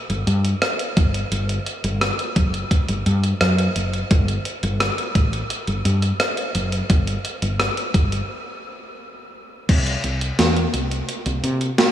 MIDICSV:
0, 0, Header, 1, 3, 480
1, 0, Start_track
1, 0, Tempo, 697674
1, 907, Time_signature, 4, 2, 24, 8
1, 8199, End_track
2, 0, Start_track
2, 0, Title_t, "Fretless electric bass"
2, 0, Program_c, 0, 35
2, 66, Note_on_c, 0, 31, 86
2, 156, Note_off_c, 0, 31, 0
2, 185, Note_on_c, 0, 43, 93
2, 366, Note_off_c, 0, 43, 0
2, 667, Note_on_c, 0, 31, 92
2, 847, Note_off_c, 0, 31, 0
2, 905, Note_on_c, 0, 31, 91
2, 1086, Note_off_c, 0, 31, 0
2, 1266, Note_on_c, 0, 31, 86
2, 1446, Note_off_c, 0, 31, 0
2, 1625, Note_on_c, 0, 30, 79
2, 1806, Note_off_c, 0, 30, 0
2, 1987, Note_on_c, 0, 31, 81
2, 2077, Note_off_c, 0, 31, 0
2, 2106, Note_on_c, 0, 43, 94
2, 2286, Note_off_c, 0, 43, 0
2, 2345, Note_on_c, 0, 42, 91
2, 2526, Note_off_c, 0, 42, 0
2, 2586, Note_on_c, 0, 30, 82
2, 2766, Note_off_c, 0, 30, 0
2, 2826, Note_on_c, 0, 31, 99
2, 3006, Note_off_c, 0, 31, 0
2, 3186, Note_on_c, 0, 31, 92
2, 3367, Note_off_c, 0, 31, 0
2, 3546, Note_on_c, 0, 33, 75
2, 3726, Note_off_c, 0, 33, 0
2, 3904, Note_on_c, 0, 31, 85
2, 3995, Note_off_c, 0, 31, 0
2, 4025, Note_on_c, 0, 43, 91
2, 4206, Note_off_c, 0, 43, 0
2, 4506, Note_on_c, 0, 30, 83
2, 4686, Note_off_c, 0, 30, 0
2, 4746, Note_on_c, 0, 31, 94
2, 4926, Note_off_c, 0, 31, 0
2, 5106, Note_on_c, 0, 31, 76
2, 5286, Note_off_c, 0, 31, 0
2, 5465, Note_on_c, 0, 31, 81
2, 5645, Note_off_c, 0, 31, 0
2, 6667, Note_on_c, 0, 36, 96
2, 6847, Note_off_c, 0, 36, 0
2, 6907, Note_on_c, 0, 36, 83
2, 7087, Note_off_c, 0, 36, 0
2, 7147, Note_on_c, 0, 40, 89
2, 7327, Note_off_c, 0, 40, 0
2, 7388, Note_on_c, 0, 36, 73
2, 7567, Note_off_c, 0, 36, 0
2, 7748, Note_on_c, 0, 36, 93
2, 7837, Note_off_c, 0, 36, 0
2, 7867, Note_on_c, 0, 48, 95
2, 8047, Note_off_c, 0, 48, 0
2, 8199, End_track
3, 0, Start_track
3, 0, Title_t, "Drums"
3, 67, Note_on_c, 9, 42, 45
3, 136, Note_off_c, 9, 42, 0
3, 187, Note_on_c, 9, 42, 65
3, 256, Note_off_c, 9, 42, 0
3, 307, Note_on_c, 9, 42, 50
3, 376, Note_off_c, 9, 42, 0
3, 425, Note_on_c, 9, 37, 109
3, 426, Note_on_c, 9, 42, 87
3, 494, Note_off_c, 9, 37, 0
3, 495, Note_off_c, 9, 42, 0
3, 546, Note_on_c, 9, 42, 55
3, 615, Note_off_c, 9, 42, 0
3, 666, Note_on_c, 9, 42, 68
3, 667, Note_on_c, 9, 36, 97
3, 735, Note_off_c, 9, 36, 0
3, 735, Note_off_c, 9, 42, 0
3, 787, Note_on_c, 9, 42, 50
3, 856, Note_off_c, 9, 42, 0
3, 907, Note_on_c, 9, 42, 79
3, 975, Note_off_c, 9, 42, 0
3, 1027, Note_on_c, 9, 42, 47
3, 1096, Note_off_c, 9, 42, 0
3, 1145, Note_on_c, 9, 42, 57
3, 1214, Note_off_c, 9, 42, 0
3, 1266, Note_on_c, 9, 42, 57
3, 1335, Note_off_c, 9, 42, 0
3, 1385, Note_on_c, 9, 37, 97
3, 1387, Note_on_c, 9, 42, 84
3, 1454, Note_off_c, 9, 37, 0
3, 1455, Note_off_c, 9, 42, 0
3, 1507, Note_on_c, 9, 42, 52
3, 1576, Note_off_c, 9, 42, 0
3, 1624, Note_on_c, 9, 42, 61
3, 1625, Note_on_c, 9, 36, 88
3, 1693, Note_off_c, 9, 42, 0
3, 1694, Note_off_c, 9, 36, 0
3, 1747, Note_on_c, 9, 42, 44
3, 1816, Note_off_c, 9, 42, 0
3, 1865, Note_on_c, 9, 36, 81
3, 1867, Note_on_c, 9, 42, 76
3, 1933, Note_off_c, 9, 36, 0
3, 1935, Note_off_c, 9, 42, 0
3, 1985, Note_on_c, 9, 42, 48
3, 2054, Note_off_c, 9, 42, 0
3, 2107, Note_on_c, 9, 42, 64
3, 2175, Note_off_c, 9, 42, 0
3, 2226, Note_on_c, 9, 42, 51
3, 2295, Note_off_c, 9, 42, 0
3, 2345, Note_on_c, 9, 37, 108
3, 2346, Note_on_c, 9, 42, 88
3, 2413, Note_off_c, 9, 37, 0
3, 2414, Note_off_c, 9, 42, 0
3, 2466, Note_on_c, 9, 42, 58
3, 2535, Note_off_c, 9, 42, 0
3, 2585, Note_on_c, 9, 42, 71
3, 2654, Note_off_c, 9, 42, 0
3, 2707, Note_on_c, 9, 42, 47
3, 2776, Note_off_c, 9, 42, 0
3, 2826, Note_on_c, 9, 42, 81
3, 2827, Note_on_c, 9, 36, 103
3, 2895, Note_off_c, 9, 36, 0
3, 2895, Note_off_c, 9, 42, 0
3, 2947, Note_on_c, 9, 42, 45
3, 3016, Note_off_c, 9, 42, 0
3, 3064, Note_on_c, 9, 42, 57
3, 3133, Note_off_c, 9, 42, 0
3, 3186, Note_on_c, 9, 42, 55
3, 3254, Note_off_c, 9, 42, 0
3, 3305, Note_on_c, 9, 37, 104
3, 3306, Note_on_c, 9, 42, 81
3, 3374, Note_off_c, 9, 37, 0
3, 3375, Note_off_c, 9, 42, 0
3, 3428, Note_on_c, 9, 42, 51
3, 3497, Note_off_c, 9, 42, 0
3, 3545, Note_on_c, 9, 36, 91
3, 3546, Note_on_c, 9, 42, 62
3, 3614, Note_off_c, 9, 36, 0
3, 3614, Note_off_c, 9, 42, 0
3, 3668, Note_on_c, 9, 42, 43
3, 3737, Note_off_c, 9, 42, 0
3, 3786, Note_on_c, 9, 42, 78
3, 3854, Note_off_c, 9, 42, 0
3, 3904, Note_on_c, 9, 42, 46
3, 3973, Note_off_c, 9, 42, 0
3, 4027, Note_on_c, 9, 42, 66
3, 4095, Note_off_c, 9, 42, 0
3, 4144, Note_on_c, 9, 42, 52
3, 4213, Note_off_c, 9, 42, 0
3, 4264, Note_on_c, 9, 37, 107
3, 4265, Note_on_c, 9, 42, 91
3, 4333, Note_off_c, 9, 37, 0
3, 4334, Note_off_c, 9, 42, 0
3, 4385, Note_on_c, 9, 42, 57
3, 4453, Note_off_c, 9, 42, 0
3, 4505, Note_on_c, 9, 42, 72
3, 4574, Note_off_c, 9, 42, 0
3, 4626, Note_on_c, 9, 42, 50
3, 4695, Note_off_c, 9, 42, 0
3, 4745, Note_on_c, 9, 42, 84
3, 4746, Note_on_c, 9, 36, 106
3, 4814, Note_off_c, 9, 42, 0
3, 4815, Note_off_c, 9, 36, 0
3, 4867, Note_on_c, 9, 42, 48
3, 4936, Note_off_c, 9, 42, 0
3, 4986, Note_on_c, 9, 42, 59
3, 5055, Note_off_c, 9, 42, 0
3, 5107, Note_on_c, 9, 42, 56
3, 5175, Note_off_c, 9, 42, 0
3, 5226, Note_on_c, 9, 37, 102
3, 5227, Note_on_c, 9, 42, 85
3, 5295, Note_off_c, 9, 37, 0
3, 5296, Note_off_c, 9, 42, 0
3, 5348, Note_on_c, 9, 42, 50
3, 5417, Note_off_c, 9, 42, 0
3, 5465, Note_on_c, 9, 36, 89
3, 5466, Note_on_c, 9, 42, 68
3, 5534, Note_off_c, 9, 36, 0
3, 5535, Note_off_c, 9, 42, 0
3, 5589, Note_on_c, 9, 42, 43
3, 5657, Note_off_c, 9, 42, 0
3, 6667, Note_on_c, 9, 36, 110
3, 6667, Note_on_c, 9, 42, 87
3, 6667, Note_on_c, 9, 49, 84
3, 6735, Note_off_c, 9, 42, 0
3, 6735, Note_off_c, 9, 49, 0
3, 6736, Note_off_c, 9, 36, 0
3, 6788, Note_on_c, 9, 42, 48
3, 6857, Note_off_c, 9, 42, 0
3, 6906, Note_on_c, 9, 42, 61
3, 6975, Note_off_c, 9, 42, 0
3, 7027, Note_on_c, 9, 42, 59
3, 7095, Note_off_c, 9, 42, 0
3, 7147, Note_on_c, 9, 38, 100
3, 7148, Note_on_c, 9, 42, 83
3, 7216, Note_off_c, 9, 38, 0
3, 7217, Note_off_c, 9, 42, 0
3, 7269, Note_on_c, 9, 42, 52
3, 7338, Note_off_c, 9, 42, 0
3, 7387, Note_on_c, 9, 42, 68
3, 7456, Note_off_c, 9, 42, 0
3, 7509, Note_on_c, 9, 42, 46
3, 7578, Note_off_c, 9, 42, 0
3, 7627, Note_on_c, 9, 42, 87
3, 7696, Note_off_c, 9, 42, 0
3, 7746, Note_on_c, 9, 42, 48
3, 7815, Note_off_c, 9, 42, 0
3, 7869, Note_on_c, 9, 42, 70
3, 7937, Note_off_c, 9, 42, 0
3, 7988, Note_on_c, 9, 42, 53
3, 8056, Note_off_c, 9, 42, 0
3, 8107, Note_on_c, 9, 38, 110
3, 8108, Note_on_c, 9, 42, 93
3, 8176, Note_off_c, 9, 38, 0
3, 8177, Note_off_c, 9, 42, 0
3, 8199, End_track
0, 0, End_of_file